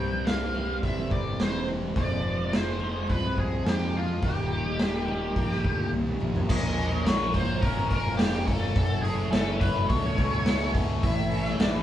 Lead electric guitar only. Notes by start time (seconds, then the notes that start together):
Already playing: G5
0.25 F5
0.84 E5
1.12 D5
1.41 C5
1.98 D5
2.55 C5
3.11 B4
3.39 G#4
3.68 G4
3.97 F4
4.24 G4
6.50 D#5
7.06 C#5
7.34 C5
7.61 A#4
7.89 A#4
8.17 G4
8.47 A4
9.02 G#4
9.32 A4
9.60 B4
9.88 C#5
11.04 E5
11.61 D5